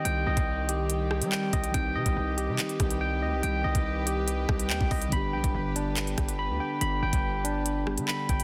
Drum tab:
HH |x--x--x-x--x--xx|x--x--x-xxxx----|x--x--x-x--x--ox|x--x--x-xxxx----|
CP |------------x---|--------x-------|------------x---|--------x-------|
SD |----------r-----|----------r-----|----------r-----|----------r-----|
BD |---o----------o-|o--o------o-----|---o------o--oo-|o--o------o-----|

HH |x--x--x-x--x--xx|
CP |------------x---|
SD |----------r-----|
BD |---o----------o-|